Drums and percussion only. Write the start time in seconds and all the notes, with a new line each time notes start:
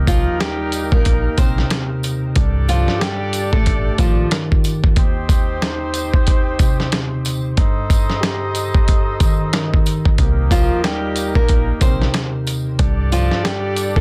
0.07 kick, closed hi-hat, tambourine
0.41 snare, closed hi-hat
0.72 closed hi-hat, tambourine
0.92 kick
1.05 kick, closed hi-hat
1.38 kick, closed hi-hat, tambourine
1.58 snare
1.70 snare, closed hi-hat
2.03 closed hi-hat, tambourine
2.36 kick, closed hi-hat
2.68 closed hi-hat, tambourine
2.88 snare
3.01 snare, closed hi-hat
3.33 closed hi-hat, tambourine
3.53 kick
3.66 kick, closed hi-hat
3.98 kick, closed hi-hat, tambourine
4.31 snare, closed hi-hat
4.52 kick
4.64 closed hi-hat, tambourine
4.84 kick
4.96 kick, closed hi-hat
5.29 kick, closed hi-hat, tambourine
5.62 snare, closed hi-hat
5.94 closed hi-hat, tambourine
6.14 kick
6.27 kick, closed hi-hat
6.59 kick, closed hi-hat, tambourine
6.80 snare
6.92 snare, closed hi-hat
7.25 closed hi-hat, tambourine
7.57 kick, closed hi-hat
7.90 kick, closed hi-hat, tambourine
8.10 snare
8.23 snare, closed hi-hat
8.55 closed hi-hat, tambourine
8.74 kick
8.88 kick, closed hi-hat
9.20 kick, closed hi-hat, tambourine
9.53 snare, closed hi-hat
9.74 kick
9.86 closed hi-hat, tambourine
10.05 kick
10.18 kick, closed hi-hat
10.51 kick, closed hi-hat, tambourine
10.84 snare, closed hi-hat
11.16 closed hi-hat, tambourine
11.35 kick
11.49 kick, closed hi-hat
11.81 kick, closed hi-hat, tambourine
12.02 snare
12.14 snare, closed hi-hat
12.47 closed hi-hat, tambourine
12.79 kick, closed hi-hat
13.12 closed hi-hat, tambourine
13.31 snare
13.45 snare, closed hi-hat
13.76 closed hi-hat, tambourine
13.96 kick